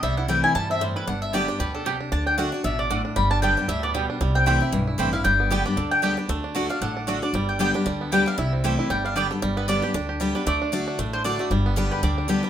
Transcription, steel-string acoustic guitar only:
0.03 C3
0.28 E3 A3 C4 E4
0.55 B2
0.81 A2
1.07 G2
1.33 D3 G3 B3 G4
1.48 B3 G4
1.60 B2
1.86 C3
2.12 D3
2.38 D3 A3 D4 F#4
2.52 D4 F#4
2.64 B2
2.91 A2
3.16 G2
3.42 D3 G3 B3 G4
3.57 B3 G4
3.69 A2
3.95 B2
4.21 C3
4.46 E3 A3 C4 E4
4.60 C4 E4
4.72 G2
4.98 E3 A3 C4 E4
5.13 C4 E4
5.25 G2
5.50 D3 G3 B3 G4
5.65 B3 G4
5.77 D3
6.02 D3 G3 B3 G4
6.17 B3 G4
6.29 D3
6.55 D3 A3 D4 F#4
6.69 D4 F#4
6.82 A2
7.07 D3 A3 D4 F#4
7.22 D4 F#4
7.34 G2
7.59 D3 G3 B3 G4
7.74 B3 G4
7.86 D3
8.12 D3 G3 B3 G4
8.26 B3 G4
8.38 C3
8.64 E3 A3 C4 E4
8.90 G2
9.16 D3 G3 B3 G4
9.31 B3 G4
9.42 G2
9.68 D3 G3 B3 G4
9.82 B3 G4
9.94 D3
10.20 D3 G3 B3 G4
10.35 B3 G4
10.47 D3
10.72 D3 A3 D4 F#4
10.99 A2
11.24 D3 A3 D4 F#4
11.39 D4 F#4
11.51 G2
11.76 D3 G3 B3 G4
12.03 D3
12.28 D3 G3 B3 G4
12.43 B3 G4

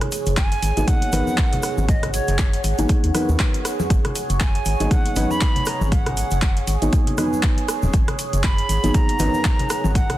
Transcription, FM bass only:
0.27 F#1
0.62 G#1
0.77 G#1
1.13 G#1
1.78 G#1
2.28 F#1
2.64 G#1
2.79 G#1
3.04 D#2
3.29 D#2
3.90 G#1
4.30 F#1
4.66 G#1
4.80 G#1
5.16 G#1
5.81 G#1
6.32 F#1
6.67 G#1
6.82 G#1
7.83 D#1
7.94 G#1
8.33 F#1
8.69 G#1
8.84 G#1
9.20 G#1
9.84 G#1

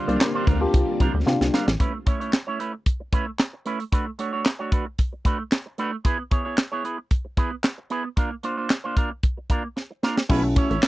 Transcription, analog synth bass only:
0.08 C2
0.47 D2
0.74 C2
1.00 C2
1.14 D2
1.27 C3
1.41 C2
1.67 A1
10.30 B1
10.70 A1

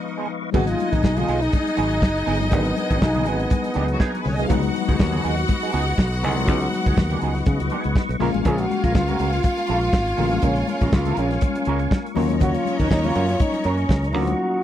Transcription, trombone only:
0.55 F#4
0.70 F4
0.94 D#4
1.05 D#4
1.18 F4
1.43 D#4
1.54 D#4
2.54 B3
2.78 B3
3.03 D#4
3.29 B3
8.46 G#4
8.60 F#4
8.85 F4
8.96 F4
9.11 F#4
9.35 F4
9.46 F4
10.45 C#4
10.70 C#4
10.95 F4
11.19 C#4
12.42 F#4
12.56 F4
12.81 D#4
12.92 D#4
13.06 F4
13.41 D#4
13.67 C#4
14.16 F#4

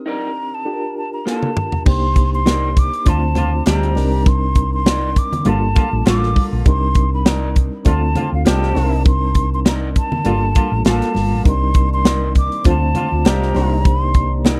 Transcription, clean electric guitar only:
0.06 D#4 A#4 D5
1.26 A#3 F4 A4
2.46 D#4 A#4 D5
3.66 F4 C5 D5
4.86 D#4 A#4 D5
6.06 A#3 F4 A4
7.25 D#4 A#4 D5
8.45 F4 C5 D5
9.65 D#4 A#4 D5
10.85 A#3 F4 A4
12.05 D#4 A#4 D5
13.25 F4 C5 D5
14.45 D#4 A#4 D5

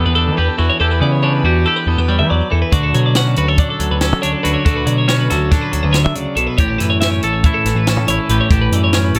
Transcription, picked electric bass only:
0.06 E2
0.28 E3
0.39 E2
0.59 E2
0.80 E2
1.01 C#3
1.44 E2
1.87 E2
1.98 E2
2.20 E3
2.31 E2
2.53 E2
2.73 D2
2.95 B2
3.37 D2
3.80 D2
3.91 D2
4.13 D3
4.24 D2
4.45 D2
4.66 D2
4.88 B2
5.31 D2
5.73 D2
5.84 D2
6.06 D3
6.15 D2
6.36 B1
6.58 A1
6.81 F#2
7.24 A1
7.65 A1
7.75 A1
7.97 A2
8.08 A1
8.29 A1
8.51 A1
8.72 F#2
9.14 A1

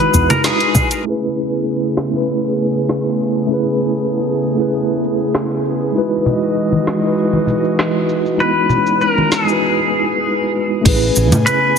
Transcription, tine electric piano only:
Already playing: G#3 D#4 E4 F#4 B4
1.03 A3 C#4 E4
1.08 G#4 B4
2.10 A3 C#4 E4
2.15 G#4 B4
3.47 A3 C#4 E4
3.52 G#4 B4
4.55 A3 C#4 E4
4.60 G#4 B4
5.92 G#3 D#4 E4
5.97 F#4 B4
7.00 G#3 D#4 E4
7.05 F#4 B4
8.36 G#3 D#4 E4
8.41 B3 F#4
9.45 G#3 D#4 E4
9.50 F#4 B4
10.81 A3 C#4 E4
10.86 G#4 B4

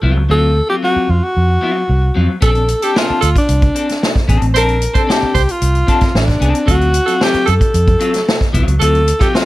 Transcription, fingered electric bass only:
0.03 C2
0.17 C#2
0.30 D2
0.96 muted fingered electric bass stroke
1.09 F2
1.37 F2
1.89 C2
2.17 F2
2.43 A#1
3.10 muted fingered electric bass stroke
3.23 D2
3.49 C2
4.29 A1
4.42 A1
4.56 A#1
5.23 muted fingered electric bass stroke
5.35 C2
5.62 C2
6.15 A1
6.41 C2
6.68 D2
7.34 muted fingered electric bass stroke
7.48 F#2
7.74 F2
8.54 C2
8.67 C#2
8.81 D2

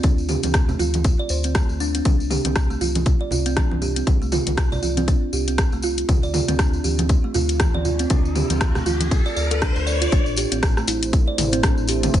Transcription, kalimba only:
0.04 D4
0.29 G4
0.44 C4
0.69 A3
0.79 F4
1.19 D5
1.30 C5
1.45 C4
1.55 A3
1.80 D4
1.95 C4
2.05 D4
2.31 G4
2.45 C4
2.70 A3
2.81 F4
3.21 D5
3.32 F4
3.46 C4
3.57 D4
3.82 G4
3.96 C4
4.22 A3
4.32 F4
4.72 D5
4.83 F4
4.97 C4
5.08 D4
5.33 G4
5.48 C4
5.73 A3
5.83 F4
6.23 D5
6.34 F4
6.48 C4
6.59 D4
6.84 G4
6.99 C4
7.24 A3
7.35 F4
7.75 D5
7.85 F4
8.00 C4
8.10 D4
8.36 G4
8.50 C4
8.75 A3
8.86 F4
9.26 D5
9.37 D5
9.51 A4
9.62 D4
9.76 C5
9.87 D5
10.01 F4
10.12 D4
10.37 G4
10.52 C4
10.77 A3
10.88 E4
11.28 D5
11.38 E4
11.53 C4
11.89 G4
12.03 C4

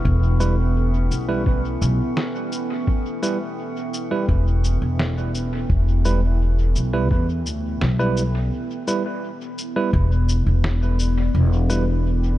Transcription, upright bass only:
0.05 E1
1.11 B1
1.82 B1
4.29 E1
4.82 E1
5.70 E1
6.76 B1
7.11 E2
7.46 D2
7.81 B1
9.93 E1
10.46 E1
11.34 E1

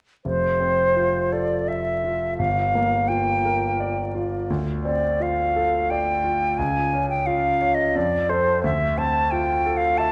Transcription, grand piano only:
0.25 F1
0.60 C4
0.96 F4
1.32 A4
1.69 E5
2.04 F4
2.39 G1
2.75 A#3
3.10 F4
3.45 A#4
3.80 D5
4.15 F4
4.50 D2
4.85 C4
5.20 F4
5.56 A4
5.91 D5
6.24 F4
6.59 C#2
6.93 C#4
7.27 F4
7.61 C#5
7.95 F2
8.29 A4 C5
8.64 D2
8.98 C4
9.32 F4
9.66 A4
10.00 E5

